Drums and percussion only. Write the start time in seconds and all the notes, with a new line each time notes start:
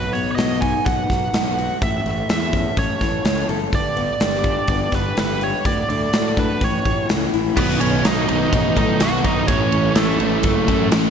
0.15 open hi-hat
0.38 snare, open hi-hat
0.62 kick, open hi-hat
0.86 kick, open hi-hat
1.10 kick, snare, open hi-hat
1.34 snare, open hi-hat
1.59 open hi-hat
1.82 kick, open hi-hat
2.06 open hi-hat
2.29 snare, open hi-hat
2.53 kick, open hi-hat
2.77 kick, open hi-hat
3.01 kick, snare, open hi-hat
3.25 snare, open hi-hat
3.49 open hi-hat
3.73 kick, open hi-hat
3.97 open hi-hat
4.20 snare, open hi-hat
4.44 kick, open hi-hat
4.68 kick, open hi-hat
4.92 kick, snare, open hi-hat
5.17 snare, open hi-hat
5.41 open hi-hat
5.65 kick, open hi-hat
5.90 open hi-hat
6.13 snare, open hi-hat
6.37 kick, open hi-hat
6.61 kick, open hi-hat
6.85 kick, open hi-hat
7.09 snare, open hi-hat
7.34 open hi-hat
7.57 kick, crash
7.70 snare
7.81 ride
8.05 snare, ride
8.29 ride
8.53 kick, ride
8.77 kick, ride
9.00 snare, ride
9.24 kick, ride
9.48 kick, ride
9.72 ride
9.95 snare, ride
10.20 ride
10.43 kick, ride
10.68 kick, ride
10.92 snare, ride